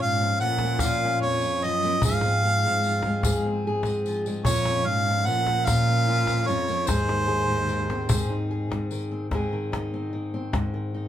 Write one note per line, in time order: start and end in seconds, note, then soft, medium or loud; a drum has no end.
0.00 0.38 G#2 medium
0.00 0.21 A#2 medium
0.00 1.02 C#4 medium
0.00 0.83 F4 medium
0.00 0.38 F5 loud
0.21 0.81 F2 medium
0.40 0.84 A#2 medium
0.40 1.64 F3 medium
0.40 0.82 F#5 loud
0.40 tambourine soft
0.58 cajon slap medium
0.63 1.83 A#3 medium
0.79 1.42 A#2 medium
0.79 1.23 F4 medium
0.79 1.21 F5 loud
0.79 cajon bass medium
0.79 cajon slap soft
0.79 tambourine loud
0.84 1.23 A#2 medium
1.05 1.99 C#4 medium
1.22 1.66 F2 medium
1.22 2.05 F4 medium
1.22 1.66 C#5 medium
1.41 tambourine soft
1.62 2.03 F#2 medium
1.62 2.84 F3 medium
1.62 2.03 D#5 medium
1.62 tambourine soft
1.82 1.99 A#3 medium
1.82 cajon slap soft
1.82 tambourine soft
2.02 3.61 G#2 medium
2.02 2.64 G#2 medium
2.02 2.44 G#4 medium
2.02 3.61 F5 loud
2.02 cajon bass medium
2.02 tambourine loud
2.21 cajon slap medium
2.21 tambourine soft
2.25 3.45 C4 medium
2.42 3.24 G#4 medium
2.42 cajon slap soft
2.66 3.24 G#2 medium
2.84 4.05 F3 medium
2.84 tambourine soft
3.02 4.26 G#3 medium
3.02 cajon slap medium
3.23 3.85 G#2 medium
3.23 3.65 G#4 medium
3.23 cajon bass medium
3.23 cajon slap soft
3.23 tambourine loud
3.46 4.46 C4 medium
3.67 4.42 G#4 medium
3.83 4.41 G#2 medium
3.83 cajon slap medium
3.83 tambourine soft
4.06 4.41 F3 medium
4.06 tambourine soft
4.25 4.46 G#3 medium
4.25 cajon slap soft
4.25 tambourine soft
4.44 4.86 F2 medium
4.44 5.07 A#2 medium
4.44 4.87 F4 medium
4.44 4.88 C#5 loud
4.44 cajon bass medium
4.44 tambourine medium
4.65 5.87 C#4 medium
4.65 cajon slap medium
4.65 tambourine soft
4.85 5.28 G#2 medium
4.85 5.28 F5 loud
5.08 5.67 F2 medium
5.26 5.67 A#2 medium
5.26 6.45 F3 medium
5.26 5.67 F#5 loud
5.26 tambourine soft
5.46 6.67 A#3 medium
5.46 cajon slap medium
5.65 6.27 A#2 medium
5.65 6.52 A#2 medium
5.65 6.07 F4 medium
5.65 6.48 F5 loud
5.65 cajon bass medium
5.65 cajon slap soft
5.65 tambourine medium
5.88 6.84 C#4 medium
6.08 6.88 F4 medium
6.27 6.87 F2 medium
6.27 cajon slap medium
6.27 tambourine soft
6.47 6.83 F3 medium
6.47 6.89 C#5 medium
6.47 tambourine soft
6.51 6.93 F2 medium
6.68 6.83 A#3 medium
6.68 cajon slap soft
6.68 tambourine soft
6.87 7.46 G#2 medium
6.87 7.26 G#4 medium
6.87 8.50 C5 loud
6.87 cajon bass loud
6.87 cajon slap soft
6.87 tambourine medium
6.92 8.52 D#2 medium
7.09 8.29 D#4 medium
7.09 cajon slap medium
7.28 8.09 G#4 medium
7.28 cajon slap soft
7.47 8.07 G#2 medium
7.68 8.90 D#3 medium
7.68 tambourine soft
7.90 9.10 C4 medium
7.90 cajon slap medium
8.09 8.69 G#2 medium
8.09 8.50 G#4 medium
8.09 cajon bass loud
8.09 tambourine medium
8.30 9.26 D#4 medium
8.30 cajon slap soft
8.51 9.27 G#4 medium
8.70 9.26 G#2 medium
8.70 cajon slap medium
8.91 9.31 D#3 medium
8.91 tambourine soft
9.11 9.26 C4 medium
9.31 10.52 G#2 medium
9.31 9.51 D#3 medium
9.31 9.93 C4 medium
9.31 9.71 D#4 medium
9.31 11.08 G#4 medium
9.31 cajon bass medium
9.31 cajon slap soft
9.53 10.12 D#3 medium
9.53 cajon slap soft
9.72 10.93 D#4 medium
9.72 cajon slap medium
9.94 10.33 C4 medium
9.94 cajon slap soft
10.13 10.73 D#3 medium
10.34 11.08 C4 medium
10.34 cajon slap soft
10.53 11.08 G#2 medium
10.53 cajon bass medium
10.53 cajon slap medium
10.74 11.08 D#3 medium
10.94 11.08 D#4 medium